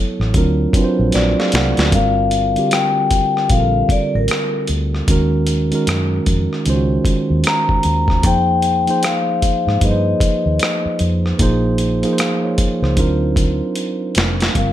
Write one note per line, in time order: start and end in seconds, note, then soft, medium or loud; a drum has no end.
0.00 0.34 F#3 medium
0.00 0.36 B3 medium
0.00 0.37 E4 medium
0.00 0.36 A4 medium
0.00 0.37 C#5 medium
0.20 0.32 A1 medium
0.20 cross-stick soft
0.34 0.66 D2 medium
0.34 0.67 F#3 medium
0.34 0.68 C4 medium
0.34 0.68 D4 medium
0.34 0.69 F4 medium
0.34 0.69 A#4 medium
0.34 kick medium
0.34 closed hi-hat medium
0.73 1.68 F#3 medium
0.73 1.68 C4 medium
0.73 1.69 D4 medium
0.73 1.15 F4 medium
0.73 kick loud
0.73 closed hi-hat medium
0.77 0.84 B4 medium
0.84 1.18 C5 medium
0.99 1.11 A#1 medium
1.12 1.33 A#1 medium
1.12 1.38 F#4 soft
1.12 1.89 D5 medium
1.12 1.37 D5 medium
1.12 snare soft
1.12 closed hi-hat medium
1.39 1.53 G#4 medium
1.39 1.53 F5 medium
1.39 snare soft
1.52 1.72 C2 medium
1.52 1.77 A#4 medium
1.52 1.77 F#5 medium
1.52 snare medium
1.52 closed hi-hat medium
1.77 1.90 D2 medium
1.77 2.16 F#4 soft
1.77 2.15 D5 medium
1.77 snare medium
1.77 closed hi-hat soft
1.91 2.55 G1 medium
1.91 2.39 D3 medium
1.91 2.39 G3 medium
1.91 2.40 C4 medium
1.91 2.40 F4 medium
1.91 2.75 F5 medium
1.91 kick loud
1.91 closed hi-hat medium
1.95 2.41 A#4 medium
2.31 closed hi-hat medium
2.55 3.31 D3 medium
2.55 3.32 G3 medium
2.55 3.32 C4 medium
2.55 3.33 F4 medium
2.55 3.33 G4 medium
2.55 closed hi-hat soft
2.71 3.47 G5 medium
2.71 cross-stick loud
2.71 closed hi-hat medium
3.11 kick medium
3.11 closed hi-hat medium
3.37 cross-stick soft
3.49 3.82 A#1 loud
3.49 4.72 D3 medium
3.49 4.73 G3 medium
3.49 4.73 C4 medium
3.49 4.74 F4 medium
3.49 3.91 F5 medium
3.49 kick medium
3.49 closed hi-hat medium
3.53 3.60 A4 medium
3.60 4.78 A#4 medium
3.89 4.15 D5 medium
3.89 kick loud
3.89 closed hi-hat medium
4.15 4.27 A1 medium
4.15 4.66 A#4 medium
4.28 cross-stick loud
4.28 closed hi-hat medium
4.67 5.00 D2 medium
4.67 closed hi-hat medium
4.95 cross-stick soft
5.07 5.71 D#2 medium
5.07 5.55 D#3 medium
5.07 5.55 G#3 medium
5.07 5.56 C#4 medium
5.07 5.56 F#4 medium
5.07 kick loud
5.07 closed hi-hat medium
5.11 5.57 A#4 loud
5.47 closed hi-hat medium
5.71 6.47 D#3 medium
5.71 6.47 G#3 medium
5.71 6.48 C#4 medium
5.71 6.48 F#4 medium
5.71 closed hi-hat soft
5.75 6.49 A#4 medium
5.87 6.19 F#2 medium
5.87 cross-stick loud
5.87 closed hi-hat medium
6.26 6.46 F2 medium
6.26 kick medium
6.26 closed hi-hat medium
6.53 cross-stick soft
6.65 6.98 C#2 medium
6.65 7.88 D#3 medium
6.65 7.89 G#3 medium
6.65 7.89 C#4 medium
6.65 6.75 F4 medium
6.65 closed hi-hat medium
6.70 7.90 C5 medium
6.75 7.93 F#4 medium
7.05 kick medium
7.05 closed hi-hat medium
7.30 7.42 D#2 medium
7.44 8.27 A#5 loud
7.44 cross-stick loud
7.44 closed hi-hat medium
7.69 kick medium
7.83 8.24 D#2 medium
7.83 closed hi-hat medium
8.08 kick medium
8.08 cross-stick soft
8.23 8.87 F2 medium
8.23 8.71 F3 medium
8.23 8.71 A#3 medium
8.23 8.72 D#4 medium
8.23 8.72 G#4 medium
8.23 9.06 G5 loud
8.23 kick loud
8.23 closed hi-hat medium
8.27 8.73 C5 medium
8.62 closed hi-hat medium
8.86 9.62 F3 medium
8.86 9.63 A#3 medium
8.86 9.63 D#4 medium
8.86 9.64 G#4 medium
8.86 closed hi-hat soft
8.90 9.65 C5 medium
9.03 9.79 F5 medium
9.03 cross-stick loud
9.03 closed hi-hat medium
9.42 muted fingered electric bass stroke soft
9.42 kick medium
9.42 closed hi-hat medium
9.67 9.79 G#2 medium
9.67 cross-stick soft
9.81 10.13 G2 medium
9.81 11.04 F3 medium
9.81 11.04 A#3 medium
9.81 11.05 D#4 medium
9.81 11.05 G#4 medium
9.81 9.91 B4 medium
9.81 kick medium
9.81 closed hi-hat medium
9.85 10.98 D#5 medium
9.91 11.09 C5 medium
10.20 kick loud
10.20 closed hi-hat medium
10.46 10.58 D#2 medium
10.59 cross-stick loud
10.59 closed hi-hat medium
10.86 muted fingered electric bass stroke soft
10.99 11.32 F2 medium
10.99 closed hi-hat medium
11.26 cross-stick soft
11.38 12.03 A#1 loud
11.38 11.86 F3 medium
11.38 11.87 A#3 medium
11.38 11.87 D#4 medium
11.38 11.88 G#4 medium
11.38 kick loud
11.38 closed hi-hat medium
11.43 11.88 C5 loud
11.78 closed hi-hat medium
12.02 12.78 F3 medium
12.02 12.79 A#3 medium
12.02 12.19 D#4 medium
12.02 12.19 G#4 medium
12.02 12.10 A#4 medium
12.02 closed hi-hat soft
12.13 12.23 C5 medium
12.18 12.42 G#4 medium
12.18 12.42 F5 medium
12.18 cross-stick loud
12.18 closed hi-hat medium
12.44 12.81 F4 medium
12.44 12.81 C#5 medium
12.58 muted fingered electric bass stroke soft
12.58 kick medium
12.58 closed hi-hat medium
12.82 12.94 C#2 medium
12.82 13.21 D#4 soft
12.82 13.20 C5 medium
12.82 cross-stick soft
12.96 13.60 D2 medium
12.96 14.19 F#3 medium
12.96 14.20 C4 medium
12.96 14.20 D4 medium
12.96 14.21 F4 medium
12.96 14.21 A#4 medium
12.96 kick medium
12.96 closed hi-hat medium
13.36 kick loud
13.36 closed hi-hat medium
13.75 closed hi-hat medium
14.15 14.48 F1 medium
14.15 snare medium
14.15 closed hi-hat medium
14.40 snare medium
14.40 closed hi-hat medium
14.54 14.73 G1 medium
14.54 14.73 D3 medium
14.54 14.73 G3 medium
14.54 14.73 C4 medium
14.54 14.73 F4 medium
14.54 14.73 F5 medium
14.54 kick medium
14.54 closed hi-hat medium
14.59 14.73 A#4 medium